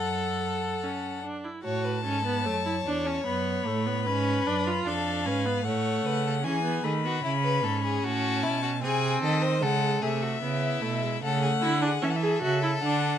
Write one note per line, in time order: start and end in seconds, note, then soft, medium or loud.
0.00 1.25 F#2 medium
0.00 0.85 A4 medium
0.00 1.20 A4 medium
0.00 1.21 F#5 medium
0.83 1.24 C#4 medium
1.24 1.46 D4 medium
1.44 1.64 E4 soft
1.64 2.06 A2 medium
1.64 2.02 F#4 medium
1.64 1.86 C#5 medium
1.64 3.22 A5 medium
1.84 2.03 B4 medium
2.03 2.47 G#2 medium
2.03 2.25 C#4 medium
2.03 2.26 A4 medium
2.24 2.47 B3 medium
2.24 2.44 B4 medium
2.44 2.86 F#2 medium
2.44 2.65 A3 medium
2.44 4.03 C#5 medium
2.65 2.73 E4 medium
2.86 3.25 E2 medium
2.86 3.08 D4 medium
3.06 3.26 C#4 medium
3.26 3.65 F#2 medium
3.26 3.68 B3 medium
3.26 4.83 B5 medium
3.66 4.08 A2 medium
3.66 3.88 A3 medium
3.86 4.08 B3 medium
4.05 4.46 G#2 medium
4.05 4.48 C#4 medium
4.05 4.84 B4 medium
4.46 4.85 F#2 medium
4.46 4.68 D4 medium
4.67 4.88 F4 medium
4.85 5.27 F2 medium
4.85 5.27 D4 medium
4.85 5.28 A4 medium
4.85 5.67 F5 medium
5.26 5.64 G#2 medium
5.26 5.47 C#4 medium
5.26 5.65 B4 medium
5.45 5.65 B3 medium
5.65 6.04 A2 medium
5.65 6.43 A3 medium
5.65 6.07 C#5 medium
5.65 6.46 F#5 medium
6.05 6.47 C#3 medium
6.05 6.25 B4 medium
6.27 6.34 A4 medium
6.44 6.84 E3 medium
6.44 6.63 C#4 medium
6.44 6.84 G#4 medium
6.44 6.85 G#5 medium
6.64 6.85 B3 medium
6.84 7.23 D#3 medium
6.84 7.05 A3 medium
6.84 6.92 G#4 medium
6.84 8.06 B5 medium
7.04 7.23 B3 medium
7.04 7.23 F#4 medium
7.24 7.66 C#3 medium
7.24 8.80 C#4 medium
7.24 7.32 E4 medium
7.44 7.65 B4 medium
7.64 8.04 G#2 medium
7.64 7.83 A4 medium
7.84 8.05 G#4 medium
8.04 8.45 A2 medium
8.04 8.45 F#4 loud
8.04 8.82 A5 medium
8.43 8.85 B2 medium
8.43 8.62 E4 medium
8.62 8.70 F#4 medium
8.82 9.23 C3 medium
8.82 9.61 C4 medium
8.82 9.22 G#4 loud
8.82 9.22 G#5 medium
9.22 9.64 D#3 medium
9.22 9.44 A4 medium
9.22 9.63 D#5 medium
9.43 9.64 C5 medium
9.62 10.03 C#3 medium
9.62 10.03 G#3 medium
9.62 10.03 A4 medium
9.62 10.02 F#5 medium
10.02 10.42 C3 medium
10.02 10.41 A3 medium
10.02 10.24 G#4 medium
10.02 11.21 E5 medium
10.22 10.42 F#4 medium
10.42 10.82 C#3 medium
10.42 10.83 B3 medium
10.42 11.21 E4 medium
10.82 11.23 B2 medium
10.82 11.04 A3 medium
11.02 11.21 G#3 medium
11.22 11.61 C#3 medium
11.22 11.63 A3 medium
11.22 11.42 A4 medium
11.22 12.06 F#5 medium
11.42 11.50 G#4 medium
11.62 12.03 D3 medium
11.62 11.81 E4 loud
11.62 11.70 F#4 medium
11.82 11.90 D4 medium
11.82 12.03 G#4 medium
12.02 12.43 E3 medium
12.02 12.10 C#4 medium
12.02 13.18 A4 medium
12.02 12.11 E5 medium
12.10 12.17 F#5 medium
12.16 12.43 E5 medium
12.22 12.41 G#4 medium
12.42 12.83 C#3 medium
12.42 12.62 F#4 medium
12.42 12.81 E5 medium
12.63 12.71 E4 medium
12.81 13.18 D3 medium
12.81 13.18 D4 medium
12.81 13.18 F#5 medium